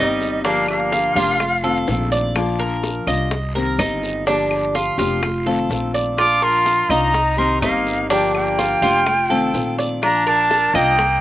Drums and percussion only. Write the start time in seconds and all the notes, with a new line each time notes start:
0.21 high bongo, short guiro, maracas
0.44 high bongo, long guiro, maracas
0.68 high bongo, claves, maracas
0.92 high bongo, short guiro, maracas
1.16 high bongo, short guiro, maracas
1.39 high bongo, long guiro, claves, maracas
1.64 maracas
1.87 high bongo, low bongo, short guiro, maracas
2.11 high bongo, short guiro, maracas
2.35 high bongo, long guiro, claves, maracas
2.59 high bongo, maracas
2.83 high bongo, short guiro, maracas
3.07 high bongo, short guiro, claves, maracas
3.31 high bongo, long guiro, maracas
3.55 maracas
3.79 high bongo, low bongo, short guiro, claves, maracas
4.03 high bongo, short guiro, maracas
4.27 high bongo, long guiro, maracas
4.51 high bongo, claves, maracas
4.75 high bongo, short guiro, maracas
4.98 high bongo, short guiro, maracas
5.22 high bongo, long guiro, claves, maracas
5.47 maracas
5.70 high bongo, low bongo, short guiro, maracas
5.94 high bongo, short guiro, maracas
6.18 high bongo, long guiro, claves, maracas
6.42 high bongo, maracas
6.66 high bongo, short guiro, maracas
6.90 high bongo, short guiro, claves, maracas
7.14 high bongo, long guiro, maracas
7.38 maracas
7.62 high bongo, low bongo, short guiro, claves, maracas
7.86 high bongo, short guiro, maracas
8.10 high bongo, long guiro, maracas
8.35 high bongo, claves, maracas
8.58 high bongo, short guiro, maracas
8.82 high bongo, short guiro, maracas
9.06 high bongo, long guiro, claves, maracas
9.30 maracas
9.54 high bongo, low bongo, short guiro, maracas
9.79 high bongo, short guiro, maracas
10.02 high bongo, long guiro, claves, maracas
10.27 high bongo, maracas
10.50 high bongo, short guiro, maracas
10.75 high bongo, short guiro, claves, maracas
10.98 high bongo, long guiro, maracas